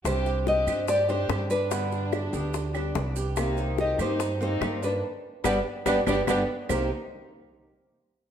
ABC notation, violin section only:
X:1
M:4/4
L:1/8
Q:1/4=144
K:Cm
V:1 name="Violin section"
G2 G2 G G2 D- | D6- D z | E2 G E2 E2 D | z2 [=B,DG] z [B,DG] [B,DG] [B,DG] z |
E z6 z |]